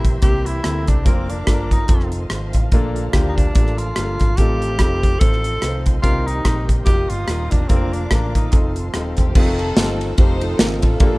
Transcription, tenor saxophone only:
0.23 G4
0.46 E4
0.88 D4
1.07 C4
1.30 D4
1.72 D#4
3.29 D#4
3.36 D4
3.78 F4
4.37 G4
5.19 A4
6.02 F4
6.26 D#4
6.85 G4
7.09 F4
7.51 D4
7.68 C4
7.93 D4
8.36 D#4

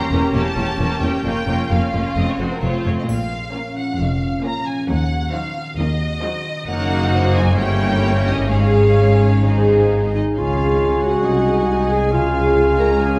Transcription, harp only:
Already playing: E3 C#4 G4
0.12 A#3
0.34 E3
0.56 G4
0.79 C#4
1.02 A#3
1.25 F3
1.48 A#4
1.70 F4
1.93 C#4
2.16 F3
2.39 A4
2.62 F4
2.85 C4
3.08 A#2
3.32 F4
3.54 C#4
3.77 F3
4.00 C#4
4.22 F4
4.45 C#4
4.66 F3
4.88 D#3
5.10 F#4
5.33 D#4
5.55 C4
5.78 D#3
6.00 F#4
6.23 D#4
6.46 C4
6.67 F#2
6.90 F#4
7.12 D#4
7.35 F#3
7.58 G2
7.81 E4
8.04 C#4
8.26 G3
8.51 G#2
8.74 F4
8.98 C#4
9.44 G#2
9.67 D#4
9.92 C4
10.15 D#3
10.37 C#3
10.60 G#3
10.81 F4
11.04 C#4
11.25 C3
11.48 C4
11.71 D#4
11.92 C4
12.13 C#3
12.35 G#3
12.58 F4
12.80 C#4
13.02 C#3

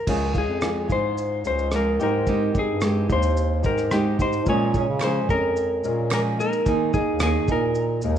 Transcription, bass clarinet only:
0.07 C#2
0.48 F2
0.90 G#2
1.45 C#2
2.01 G#2
2.69 G2
3.10 D#2
3.65 G#2
4.19 G#2
4.47 A#2
4.88 C#3
5.29 F2
5.84 A#2
7.08 D#2
7.48 A#2
8.03 D#2

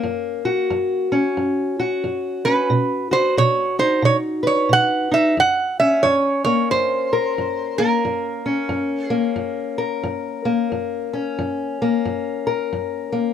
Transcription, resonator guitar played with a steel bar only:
2.45 B4
3.13 C5
3.38 C#5
3.79 C5
4.05 C#5
4.47 C#5
4.73 F#5
5.14 E5
5.40 F#5
5.80 E5
6.03 C#5
6.45 C#5
6.71 C5
7.78 A#4
9.06 G#4

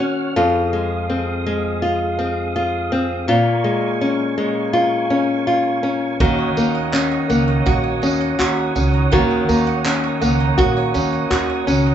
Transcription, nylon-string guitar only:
Already playing: D#3 A#3 F#4
0.00 C#4
0.36 F2 F4
0.73 G#3
1.10 C4
1.46 G#3
1.82 F4
2.19 C4
2.56 F4
2.92 C4
3.28 A#2 F4
3.64 G#3
4.01 C#4
4.38 G#3
4.73 F4
5.10 C#4
5.47 F4
5.83 C#4
6.20 D#3 F#4
6.57 A#3
6.93 C#4
7.30 A#3
7.66 F#4
8.03 C#4
8.39 F#4
8.76 C#4
9.12 D#3 F#4
9.49 A#3
9.85 C#4
10.21 A#3
10.58 F#4
10.94 C#4
11.30 F#4
11.67 C#4

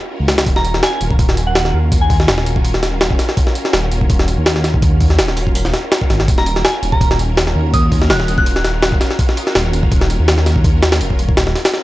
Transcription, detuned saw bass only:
0.20 C#2
0.46 D#1
1.01 D#1
1.74 D#2
2.28 D#1
2.46 D#1
3.73 D#1
3.92 D#1
4.38 D#2
5.19 D#1
5.37 D#1
6.10 G#1
6.28 D#1
6.83 D#1
7.55 D#2
8.10 D#1
8.28 D#1
9.55 D#1
9.73 D#1
10.19 D#2
11.01 D#1
11.19 D#1

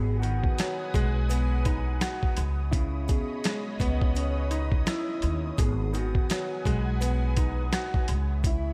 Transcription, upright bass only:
Already playing: G#1
0.94 B1
2.38 C#2
3.80 C#2
5.23 D#2
5.59 G#1
6.66 B1
8.09 C#2

